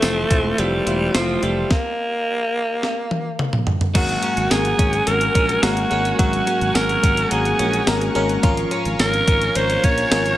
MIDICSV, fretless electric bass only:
0, 0, Header, 1, 2, 480
1, 0, Start_track
1, 0, Tempo, 560748
1, 1461, Time_signature, 4, 2, 24, 8
1, 8880, End_track
2, 0, Start_track
2, 0, Title_t, "Fretless electric bass"
2, 0, Program_c, 0, 35
2, 25, Note_on_c, 0, 29, 103
2, 196, Note_off_c, 0, 29, 0
2, 262, Note_on_c, 0, 28, 88
2, 434, Note_off_c, 0, 28, 0
2, 504, Note_on_c, 0, 29, 110
2, 676, Note_off_c, 0, 29, 0
2, 742, Note_on_c, 0, 28, 87
2, 914, Note_off_c, 0, 28, 0
2, 983, Note_on_c, 0, 29, 101
2, 1155, Note_off_c, 0, 29, 0
2, 1223, Note_on_c, 0, 29, 94
2, 1395, Note_off_c, 0, 29, 0
2, 3383, Note_on_c, 0, 32, 100
2, 3555, Note_off_c, 0, 32, 0
2, 3744, Note_on_c, 0, 32, 96
2, 3829, Note_off_c, 0, 32, 0
2, 3864, Note_on_c, 0, 32, 98
2, 4036, Note_off_c, 0, 32, 0
2, 4101, Note_on_c, 0, 32, 100
2, 4274, Note_off_c, 0, 32, 0
2, 4343, Note_on_c, 0, 32, 100
2, 4515, Note_off_c, 0, 32, 0
2, 4582, Note_on_c, 0, 34, 87
2, 4754, Note_off_c, 0, 34, 0
2, 4818, Note_on_c, 0, 32, 110
2, 4992, Note_off_c, 0, 32, 0
2, 5061, Note_on_c, 0, 32, 96
2, 5234, Note_off_c, 0, 32, 0
2, 5301, Note_on_c, 0, 32, 101
2, 5474, Note_off_c, 0, 32, 0
2, 5661, Note_on_c, 0, 32, 103
2, 5747, Note_off_c, 0, 32, 0
2, 5780, Note_on_c, 0, 32, 105
2, 5953, Note_off_c, 0, 32, 0
2, 6022, Note_on_c, 0, 32, 100
2, 6194, Note_off_c, 0, 32, 0
2, 6264, Note_on_c, 0, 32, 98
2, 6435, Note_off_c, 0, 32, 0
2, 6502, Note_on_c, 0, 34, 85
2, 6674, Note_off_c, 0, 34, 0
2, 6740, Note_on_c, 0, 32, 112
2, 6913, Note_off_c, 0, 32, 0
2, 6982, Note_on_c, 0, 32, 98
2, 7154, Note_off_c, 0, 32, 0
2, 7221, Note_on_c, 0, 32, 110
2, 7394, Note_off_c, 0, 32, 0
2, 7581, Note_on_c, 0, 32, 100
2, 7668, Note_off_c, 0, 32, 0
2, 7701, Note_on_c, 0, 32, 105
2, 7874, Note_off_c, 0, 32, 0
2, 7942, Note_on_c, 0, 32, 95
2, 8114, Note_off_c, 0, 32, 0
2, 8182, Note_on_c, 0, 32, 94
2, 8355, Note_off_c, 0, 32, 0
2, 8422, Note_on_c, 0, 34, 92
2, 8594, Note_off_c, 0, 34, 0
2, 8661, Note_on_c, 0, 32, 108
2, 8834, Note_off_c, 0, 32, 0
2, 8880, End_track
0, 0, End_of_file